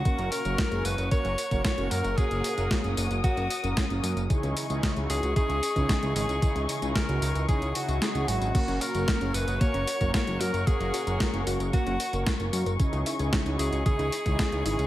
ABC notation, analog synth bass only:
X:1
M:4/4
L:1/16
Q:1/4=113
K:F#mix
V:1 name="Analog synth bass" clef=bass
z F,,, z F,,, z F,,, F,,, F,,, z F,,, z F,,, z F,,, F,, F,,, | z F,,, z F,,, z F,,, F,,, F,,, z F,,, z F,,, z F,,, F,, F,,, | z C,, z C,, z C,, C,, C,, z C,, z C,, z C,, G,,, C,, | z C,, z C,, z C,, C,, C,, z C,, z C,, z C,, G,,, G,,, |
z F,,, z F,,, z F,,, F,,, F,,, z F,,, z F,,, z F,,, F,, F,,, | z F,,, z F,,, z F,,, F,,, F,,, z F,,, z F,,, z F,,, F,, F,,, | z C,, z C,, z C,, C,, C,, z C,, z C,, z C,, G,,, C,, |]